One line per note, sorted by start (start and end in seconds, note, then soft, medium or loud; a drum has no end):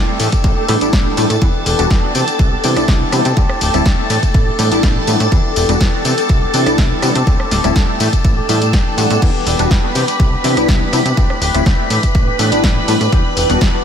0.00 0.19 A3 medium
0.00 0.20 C4 medium
0.00 0.20 G4 loud
0.00 1.41 A4 medium
0.00 1.41 A5 medium
0.08 0.18 G3 medium
0.08 0.18 A3 medium
0.08 0.18 C4 medium
0.08 0.18 E4 medium
0.19 0.28 A2 loud
0.19 0.32 E3 medium
0.19 0.33 A3 medium
0.19 0.32 D4 medium
0.19 0.31 G4 medium
0.19 open hi-hat loud
0.19 tambourine medium
0.32 0.57 A3 medium
0.32 0.56 D4 medium
0.32 kick medium
0.32 closed hi-hat medium
0.32 tambourine soft
0.44 0.52 A1 medium
0.44 kick loud
0.44 closed hi-hat soft
0.44 tambourine soft
0.56 0.68 A3 medium
0.56 0.68 D4 medium
0.56 0.68 G4 medium
0.68 0.76 A2 loud
0.68 0.81 E3 medium
0.68 0.79 G3 medium
0.68 0.82 A3 medium
0.68 0.79 B3 medium
0.68 0.79 D4 medium
0.68 0.81 D4 medium
0.68 0.79 E4 medium
0.68 0.80 G4 medium
0.68 open hi-hat loud
0.68 tambourine medium
0.81 0.91 A1 soft
0.81 1.14 G3 medium
0.81 0.92 A3 medium
0.81 1.15 B3 medium
0.81 1.15 D4 medium
0.81 0.92 D4 medium
0.81 1.15 E4 medium
0.81 0.93 G4 medium
0.81 closed hi-hat medium
0.81 tambourine soft
0.92 1.08 A1 medium
0.92 1.30 E3 medium
0.92 1.30 A3 loud
0.92 1.30 D4 loud
0.92 1.28 G4 loud
0.92 kick loud
0.92 snare loud
0.92 closed hi-hat medium
1.17 1.25 A2 loud
1.17 1.28 G3 medium
1.17 1.28 B3 medium
1.17 1.28 D4 medium
1.17 1.28 E4 loud
1.17 open hi-hat loud
1.17 tambourine medium
1.30 1.37 A2 medium
1.30 1.42 A3 medium
1.30 1.41 D4 medium
1.30 1.41 G4 medium
1.30 closed hi-hat medium
1.30 tambourine soft
1.41 1.50 E2 loud
1.41 1.64 E3 medium
1.41 1.65 B3 medium
1.41 1.66 D4 loud
1.41 1.66 G4 medium
1.41 9.23 A4 medium
1.41 9.23 A5 medium
1.41 kick loud
1.41 closed hi-hat medium
1.41 tambourine soft
1.66 1.74 E1 loud
1.66 1.89 E3 medium
1.66 1.90 B3 medium
1.66 1.90 D4 medium
1.66 1.90 G4 medium
1.66 open hi-hat loud
1.66 tambourine medium
1.79 1.86 E1 medium
1.79 1.88 G3 medium
1.79 1.88 B3 medium
1.79 1.89 D4 medium
1.79 1.89 F#4 medium
1.79 closed hi-hat medium
1.79 tambourine soft
1.91 1.98 E2 medium
1.91 2.14 B3 loud
1.91 2.14 D4 loud
1.91 2.15 G4 loud
1.91 kick loud
1.91 snare loud
1.91 closed hi-hat medium
1.91 tambourine soft
2.03 2.13 G3 medium
2.03 2.13 B3 medium
2.03 2.13 D4 medium
2.03 2.13 F#4 medium
2.14 2.23 C3 loud
2.14 2.27 E3 medium
2.14 2.28 B3 medium
2.14 2.27 D4 medium
2.14 2.26 G4 medium
2.14 open hi-hat loud
2.14 tambourine medium
2.28 2.52 B3 medium
2.28 2.51 D4 medium
2.28 closed hi-hat medium
2.28 tambourine soft
2.39 2.55 C2 medium
2.39 kick loud
2.39 closed hi-hat soft
2.39 tambourine soft
2.52 2.63 B3 medium
2.52 2.63 D4 medium
2.52 2.63 G4 medium
2.63 2.76 C3 medium
2.63 2.76 E3 medium
2.63 2.74 G3 medium
2.63 2.74 B3 medium
2.63 2.77 B3 medium
2.63 2.74 D4 medium
2.63 2.76 D4 medium
2.63 2.75 E4 medium
2.63 2.75 G4 medium
2.63 open hi-hat loud
2.63 tambourine medium
2.76 2.86 C2 soft
2.76 3.10 G3 medium
2.76 3.10 B3 medium
2.76 2.87 B3 medium
2.76 3.10 D4 medium
2.76 2.88 D4 medium
2.76 3.10 E4 medium
2.76 2.88 G4 medium
2.76 cross-stick medium
2.76 closed hi-hat medium
2.76 tambourine soft
2.88 3.04 C2 medium
2.88 3.25 B3 medium
2.88 3.25 D4 loud
2.88 3.24 G4 loud
2.88 kick loud
2.88 snare loud
2.88 closed hi-hat medium
3.12 3.20 C3 loud
3.12 3.23 G3 medium
3.12 3.23 B3 medium
3.12 3.23 D4 medium
3.12 3.23 E4 loud
3.12 cross-stick medium
3.12 open hi-hat loud
3.12 tambourine medium
3.25 3.33 C3 medium
3.25 3.36 B3 medium
3.25 3.37 D4 medium
3.25 3.37 G4 medium
3.25 closed hi-hat medium
3.25 tambourine soft
3.36 3.45 D2 loud
3.36 3.59 A3 medium
3.36 3.61 C4 loud
3.36 3.61 G4 loud
3.36 kick loud
3.36 closed hi-hat medium
3.36 tambourine soft
3.49 cross-stick medium
3.61 3.69 D1 loud
3.61 3.84 A3 medium
3.61 3.85 C4 medium
3.61 3.85 G4 medium
3.61 open hi-hat loud
3.61 tambourine medium
3.74 3.81 D1 medium
3.74 3.83 G3 medium
3.74 3.84 A3 medium
3.74 3.84 C4 medium
3.74 3.84 E4 medium
3.74 cross-stick medium
3.74 closed hi-hat medium
3.74 tambourine soft
3.85 3.94 D2 medium
3.85 4.09 A3 medium
3.85 4.10 C4 loud
3.85 4.10 G4 loud
3.85 kick loud
3.85 snare loud
3.85 closed hi-hat medium
3.85 tambourine soft
3.98 4.08 G3 medium
3.98 4.08 A3 medium
3.98 4.08 C4 medium
3.98 4.08 E4 medium
4.09 4.18 A2 loud
4.09 4.23 E3 medium
4.09 4.23 A3 medium
4.09 4.22 D4 medium
4.09 4.21 G4 medium
4.09 open hi-hat loud
4.09 tambourine medium
4.22 4.47 A3 medium
4.22 4.45 G4 medium
4.22 kick medium
4.22 closed hi-hat medium
4.22 tambourine soft
4.34 4.50 A1 medium
4.34 kick loud
4.34 closed hi-hat medium
4.34 tambourine soft
4.47 4.58 A3 medium
4.47 4.58 D4 medium
4.47 4.58 G4 medium
4.58 4.71 A2 medium
4.58 4.71 E3 medium
4.58 4.69 G3 medium
4.58 4.72 A3 medium
4.58 4.69 B3 medium
4.58 4.70 D4 medium
4.58 4.71 D4 medium
4.58 4.70 E4 medium
4.58 4.70 G4 medium
4.58 open hi-hat loud
4.58 tambourine medium
4.71 4.81 A1 soft
4.71 5.05 G3 medium
4.71 4.82 A3 medium
4.71 5.05 B3 medium
4.71 5.05 D4 medium
4.71 4.82 D4 medium
4.71 5.05 E4 medium
4.71 4.83 G4 medium
4.71 closed hi-hat medium
4.71 tambourine soft
4.83 4.99 A1 medium
4.83 5.20 E3 medium
4.83 5.20 A3 loud
4.83 5.20 D4 loud
4.83 5.19 G4 medium
4.83 kick loud
4.83 snare loud
4.83 closed hi-hat medium
4.83 tambourine soft
5.07 5.15 A2 loud
5.07 5.18 G3 medium
5.07 5.18 B3 medium
5.07 5.18 D4 medium
5.07 5.18 E4 loud
5.07 open hi-hat loud
5.07 tambourine medium
5.20 5.28 A2 medium
5.20 5.32 A3 soft
5.20 5.31 D4 medium
5.20 5.32 G4 medium
5.20 closed hi-hat medium
5.20 tambourine soft
5.32 5.40 E2 loud
5.32 5.54 E3 medium
5.32 5.55 B3 medium
5.32 5.56 D4 loud
5.32 5.57 G4 loud
5.32 kick loud
5.32 closed hi-hat medium
5.32 tambourine soft
5.56 5.64 E1 loud
5.56 5.79 E3 medium
5.56 5.80 B3 medium
5.56 5.80 D4 medium
5.56 5.81 G4 medium
5.56 open hi-hat loud
5.56 tambourine medium
5.69 5.76 E1 medium
5.69 5.79 G3 medium
5.69 5.79 B3 medium
5.69 5.79 D4 medium
5.69 5.79 F#4 medium
5.69 closed hi-hat medium
5.69 tambourine soft
5.80 5.89 E2 medium
5.80 6.03 E3 medium
5.80 6.04 B3 medium
5.80 6.05 D4 loud
5.80 6.05 G4 loud
5.80 kick loud
5.80 snare loud
5.80 closed hi-hat medium
5.93 6.03 G3 medium
5.93 6.03 B3 medium
5.93 6.03 D4 medium
5.93 6.03 F#4 medium
6.05 6.13 C3 loud
6.05 6.18 E3 medium
6.05 6.18 B3 medium
6.05 6.17 D4 medium
6.05 6.16 G4 medium
6.05 open hi-hat loud
6.05 tambourine medium
6.17 6.43 B3 medium
6.17 6.42 D4 medium
6.17 6.41 G4 medium
6.17 closed hi-hat medium
6.17 tambourine medium
6.29 6.45 C2 medium
6.29 kick loud
6.29 closed hi-hat medium
6.29 tambourine soft
6.42 6.53 B3 medium
6.42 6.54 D4 medium
6.42 6.54 G4 medium
6.53 6.66 C3 medium
6.53 6.66 E3 medium
6.53 6.64 G3 medium
6.53 6.64 B3 medium
6.53 6.67 B3 medium
6.53 6.64 D4 medium
6.53 6.66 D4 medium
6.53 6.65 E4 medium
6.53 6.65 G4 medium
6.53 open hi-hat loud
6.53 tambourine medium
6.66 6.76 C2 soft
6.66 7.00 G3 medium
6.66 7.00 B3 medium
6.66 6.77 B3 medium
6.66 7.00 D4 medium
6.66 6.78 D4 medium
6.66 7.00 E4 medium
6.66 6.78 G4 medium
6.66 cross-stick medium
6.66 closed hi-hat medium
6.66 tambourine soft
6.78 6.94 C2 loud
6.78 7.15 E3 loud
6.78 7.16 B3 medium
6.78 7.15 D4 medium
6.78 7.14 G4 loud
6.78 kick loud
6.78 snare loud
6.78 closed hi-hat medium
6.78 tambourine soft
7.02 7.11 C3 loud
7.02 7.13 G3 loud
7.02 7.13 B3 medium
7.02 7.13 D4 medium
7.02 7.13 E4 loud
7.02 cross-stick medium
7.02 open hi-hat loud
7.02 tambourine medium
7.15 7.23 C3 medium
7.15 7.26 B3 medium
7.15 7.27 D4 medium
7.15 7.27 G4 medium
7.15 closed hi-hat medium
7.15 tambourine soft
7.27 7.35 D2 loud
7.27 7.50 A3 medium
7.27 7.51 C4 medium
7.27 7.52 G4 loud
7.27 kick loud
7.27 closed hi-hat medium
7.27 tambourine soft
7.40 cross-stick medium
7.51 7.59 D1 loud
7.51 7.74 A3 medium
7.51 7.75 C4 medium
7.51 7.76 G4 medium
7.51 snare medium
7.51 open hi-hat loud
7.51 tambourine medium
7.64 7.71 D1 medium
7.64 7.74 G3 medium
7.64 7.74 A3 medium
7.64 7.74 C4 medium
7.64 7.74 E4 medium
7.64 cross-stick medium
7.64 closed hi-hat medium
7.64 tambourine soft
7.76 7.84 D2 medium
7.76 7.99 A3 medium
7.76 8.01 C4 loud
7.76 8.01 G4 loud
7.76 kick loud
7.76 snare loud
7.76 closed hi-hat medium
7.76 tambourine soft
7.88 7.98 G3 medium
7.88 7.98 A3 medium
7.88 7.98 C4 medium
7.88 7.98 E4 medium
8.00 8.08 A2 loud
8.00 8.13 E3 medium
8.00 8.13 A3 medium
8.00 8.12 D4 medium
8.00 8.11 G4 medium
8.00 open hi-hat loud
8.00 tambourine medium
8.12 8.38 A3 medium
8.12 8.37 D4 medium
8.12 8.36 G4 medium
8.12 kick medium
8.12 closed hi-hat medium
8.12 tambourine soft
8.25 8.40 A1 medium
8.25 kick loud
8.25 closed hi-hat medium
8.25 tambourine soft
8.37 8.48 A3 medium
8.37 8.48 D4 medium
8.37 8.49 G4 medium
8.48 8.75 A2 loud
8.48 8.61 E3 medium
8.48 8.59 G3 medium
8.48 8.62 A3 medium
8.48 8.60 B3 medium
8.48 8.60 D4 medium
8.48 8.61 D4 medium
8.48 8.60 E4 loud
8.48 8.60 G4 medium
8.48 open hi-hat loud
8.48 tambourine medium
8.61 8.72 A3 medium
8.61 8.73 D4 medium
8.61 8.73 G4 medium
8.61 closed hi-hat medium
8.61 tambourine soft
8.73 8.81 A1 loud
8.73 9.10 E3 medium
8.73 9.11 A3 medium
8.73 9.10 D4 loud
8.73 9.09 G4 loud
8.73 kick loud
8.73 snare loud
8.73 closed hi-hat medium
8.73 tambourine soft
8.97 9.06 A2 loud
8.97 9.56 G3 medium
8.97 9.56 B3 medium
8.97 9.56 D4 medium
8.97 9.57 F#5 loud
8.97 open hi-hat loud
8.97 tambourine medium
9.10 9.18 A2 medium
9.10 9.22 A3 soft
9.10 9.22 D4 medium
9.10 9.22 G4 medium
9.10 closed hi-hat medium
9.10 tambourine soft
9.22 9.30 E2 loud
9.22 9.45 E3 medium
9.22 9.46 B3 medium
9.22 9.46 D4 loud
9.22 9.47 G4 loud
9.22 13.84 B4 medium
9.22 13.84 B5 medium
9.22 kick loud
9.22 closed hi-hat medium
9.22 crash medium
9.22 tambourine soft
9.46 9.55 E1 loud
9.46 9.69 E3 medium
9.46 9.70 B3 medium
9.46 9.70 D4 medium
9.46 9.71 G4 medium
9.46 open hi-hat loud
9.46 tambourine medium
9.59 9.67 E1 medium
9.59 9.69 G3 medium
9.59 9.69 B3 medium
9.59 9.69 D4 medium
9.59 9.69 F#4 medium
9.59 closed hi-hat medium
9.59 tambourine soft
9.71 9.79 E2 medium
9.71 9.94 E3 medium
9.71 9.94 B3 medium
9.71 9.95 D4 medium
9.71 9.96 G4 loud
9.71 kick loud
9.71 snare loud
9.71 closed hi-hat medium
9.71 tambourine soft
9.83 9.93 G3 medium
9.83 9.93 B3 medium
9.83 9.93 D4 medium
9.83 9.94 F#4 medium
9.95 10.03 C3 loud
9.95 10.08 E3 medium
9.95 10.08 B3 medium
9.95 10.08 D4 medium
9.95 10.07 G4 medium
9.95 open hi-hat loud
9.95 tambourine medium
10.08 10.33 B3 medium
10.08 10.32 D4 medium
10.08 10.31 G4 medium
10.08 closed hi-hat medium
10.08 tambourine soft
10.20 10.35 C2 medium
10.20 kick loud
10.20 closed hi-hat medium
10.20 tambourine soft
10.32 10.43 B3 medium
10.32 10.44 D4 medium
10.32 10.44 G4 medium
10.44 10.56 C3 loud
10.44 10.57 E3 medium
10.44 10.55 G3 medium
10.44 10.55 B3 medium
10.44 10.57 B3 medium
10.44 10.55 D4 medium
10.44 10.56 D4 medium
10.44 10.55 E4 medium
10.44 10.55 G4 medium
10.44 open hi-hat loud
10.44 tambourine medium
10.57 10.66 C2 soft
10.57 10.90 G3 medium
10.57 10.90 B3 medium
10.57 10.68 B3 medium
10.57 10.90 D4 medium
10.57 10.68 D4 medium
10.57 10.91 E4 medium
10.57 cross-stick medium
10.57 closed hi-hat medium
10.57 tambourine soft
10.68 10.84 C2 loud
10.68 11.06 E3 loud
10.68 11.06 B3 medium
10.68 11.05 D4 loud
10.68 11.04 G4 loud
10.68 kick loud
10.68 snare loud
10.68 closed hi-hat medium
10.68 tambourine soft
10.93 11.01 C3 loud
10.93 11.03 G3 loud
10.93 11.04 B3 medium
10.93 11.04 D4 medium
10.93 11.04 E4 loud
10.93 cross-stick medium
10.93 open hi-hat loud
10.93 tambourine medium
11.05 11.13 C3 medium
11.05 11.17 B3 medium
11.05 11.17 D4 medium
11.05 11.17 G4 medium
11.05 closed hi-hat medium
11.05 tambourine soft
11.17 11.25 D2 loud
11.17 11.40 A3 medium
11.17 11.41 C4 medium
11.17 11.42 G4 loud
11.17 kick loud
11.17 closed hi-hat medium
11.17 tambourine soft
11.30 cross-stick medium
11.41 11.50 D1 loud
11.41 11.65 A3 medium
11.41 11.65 C4 medium
11.41 11.66 G4 medium
11.41 open hi-hat loud
11.41 tambourine medium
11.54 11.62 D1 medium
11.54 11.64 G3 medium
11.54 11.64 A3 medium
11.54 11.64 C4 medium
11.54 11.64 E4 medium
11.54 cross-stick medium
11.54 closed hi-hat medium
11.54 tambourine soft
11.66 11.74 D2 medium
11.66 11.90 A3 medium
11.66 11.91 C4 medium
11.66 11.91 G4 loud
11.66 kick loud
11.66 snare loud
11.66 closed hi-hat medium
11.66 tambourine soft
11.79 11.88 G3 medium
11.79 11.88 A3 medium
11.79 11.89 C4 medium
11.79 11.89 E4 medium
11.90 11.98 A2 loud
11.90 12.03 E3 medium
11.90 12.03 A3 medium
11.90 12.03 D4 medium
11.90 12.02 G4 medium
11.90 open hi-hat loud
11.90 tambourine medium
12.03 12.26 G4 medium
12.03 kick medium
12.03 closed hi-hat medium
12.03 tambourine soft
12.15 12.30 A1 medium
12.15 kick loud
12.15 closed hi-hat medium
12.15 tambourine soft
12.27 12.38 A3 medium
12.27 12.39 D4 medium
12.27 12.39 G4 medium
12.39 12.51 A2 medium
12.39 12.52 E3 medium
12.39 12.50 G3 medium
12.39 12.52 A3 medium
12.39 12.50 B3 medium
12.39 12.50 D4 medium
12.39 12.52 D4 medium
12.39 12.50 E4 medium
12.39 12.51 G4 medium
12.39 open hi-hat loud
12.39 tambourine medium
12.52 12.61 A1 soft
12.52 12.85 G3 medium
12.52 12.63 A3 medium
12.52 12.85 B3 medium
12.52 12.86 D4 medium
12.52 12.63 D4 medium
12.52 12.86 E4 medium
12.52 12.64 G4 medium
12.52 closed hi-hat medium
12.52 tambourine soft
12.63 12.79 A1 loud
12.63 13.01 E3 loud
12.63 13.01 A3 loud
12.63 13.00 D4 loud
12.63 12.99 G4 loud
12.63 kick loud
12.63 snare loud
12.63 closed hi-hat medium
12.63 tambourine soft
12.88 12.96 A2 medium
12.88 12.98 G3 loud
12.88 12.99 B3 medium
12.88 12.99 D4 medium
12.88 12.99 E4 loud
12.88 open hi-hat loud
12.88 tambourine medium
13.00 13.08 A2 medium
13.00 13.12 A3 medium
13.00 13.12 D4 medium
13.00 13.12 G4 medium
13.00 closed hi-hat medium
13.00 tambourine soft
13.12 13.20 E2 loud
13.12 13.35 E3 medium
13.12 13.36 B3 medium
13.12 13.37 D4 medium
13.12 13.37 G4 loud
13.12 kick loud
13.12 closed hi-hat medium
13.12 tambourine soft
13.36 13.45 E1 loud
13.36 13.60 E3 medium
13.36 13.60 B3 medium
13.36 13.61 D4 medium
13.36 13.61 G4 medium
13.36 open hi-hat loud
13.36 tambourine medium
13.49 13.57 E1 medium
13.49 13.59 G3 medium
13.49 13.59 B3 medium
13.49 13.59 D4 medium
13.49 13.59 F#4 medium
13.49 closed hi-hat medium
13.49 tambourine soft
13.61 13.69 E2 medium
13.61 13.84 E3 medium
13.61 13.84 B3 medium
13.61 13.84 D4 medium
13.61 13.84 G4 loud
13.61 kick loud
13.61 snare loud
13.61 closed hi-hat medium
13.61 tambourine soft
13.74 13.83 G3 medium
13.74 13.83 B3 medium
13.74 13.84 D4 medium
13.74 13.84 F#4 medium